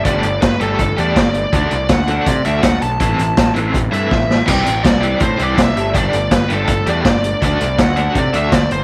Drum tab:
CC |--------|--------|--------|x-------|
HH |xxxxxxxx|xxxxxxxx|xxxxxx--|xxxxxxxx|
SD |--o---o-|--o---o-|--o---oo|--o---o-|
BD |o-o-o-o-|o-o-o-o-|o-o-o-o-|o-o-o-o-|

CC |--------|--------|
HH |xxxxxxxx|xxxxxxxx|
SD |--o---o-|--o---o-|
BD |o-o-o-o-|o-o-o-o-|